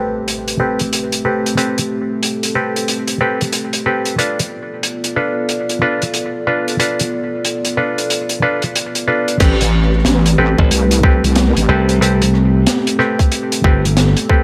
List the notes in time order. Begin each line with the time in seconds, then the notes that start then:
Already playing: A3 C4 G4 A4 B4, impact
0.28 closed hi-hat
0.48 closed hi-hat
0.60 C4 G4 A4 B4
0.79 closed hi-hat
0.93 closed hi-hat
1.12 closed hi-hat
1.25 C4 G4 A4 B4
1.46 closed hi-hat
1.57 C4 G4 A4 B4, closed hi-hat
1.78 closed hi-hat
2.23 closed hi-hat
2.43 closed hi-hat
2.55 C4 G4 A4 B4
2.76 closed hi-hat
2.88 closed hi-hat
3.08 closed hi-hat
3.21 C4 G4 A4 B4
3.41 closed hi-hat
3.53 closed hi-hat
3.73 closed hi-hat
3.86 C4 G4 A4 B4
4.05 closed hi-hat
4.18 B3 D4 F4 A4 B4 D5, closed hi-hat
4.39 closed hi-hat
4.83 closed hi-hat
5.04 closed hi-hat
5.16 D4 F4 A4 B4
5.49 closed hi-hat
5.69 closed hi-hat
5.82 D4 F4 A4 B4
6.02 closed hi-hat
6.14 closed hi-hat
6.47 D4 F4 A4 B4
6.68 closed hi-hat
6.80 D4 F4 A4 B4, closed hi-hat
6.99 closed hi-hat
7.45 closed hi-hat
7.65 closed hi-hat
7.77 D4 F4 A4 B4
7.98 closed hi-hat
8.10 closed hi-hat
8.29 closed hi-hat
8.42 D4 F4 A4 B4
8.62 closed hi-hat
8.76 closed hi-hat
8.95 closed hi-hat
9.08 D4 F4 A4 B4
9.28 closed hi-hat
9.40 A1 A3 C4 G4 A4 B4, kick, closed hi-hat, crash
9.61 closed hi-hat
9.72 cross-stick
9.82 cross-stick
9.93 cross-stick
9.99 cross-stick
10.05 A1, snare, closed hi-hat
10.26 closed hi-hat
10.38 A1 C4 G4 A4 B4
10.59 A1, kick
10.71 C2, closed hi-hat
10.91 closed hi-hat
11.03 C4 G4 A4 B4, kick
11.24 C2, closed hi-hat
11.35 snare, closed hi-hat
11.56 A1, closed hi-hat
11.69 C2 C4 G4 A4 B4
11.89 closed hi-hat
12.01 C4 G4 A4 B4, closed hi-hat
12.22 closed hi-hat
12.34 cross-stick
12.67 snare, closed hi-hat
12.87 closed hi-hat
12.99 C4 G4 A4 B4, cross-stick
13.19 kick, closed hi-hat
13.32 closed hi-hat
13.52 closed hi-hat
13.64 G1 C4 G4 A4 B4, kick
13.85 closed hi-hat
13.97 snare, closed hi-hat
14.17 closed hi-hat
14.29 C4 G4 A4 B4, kick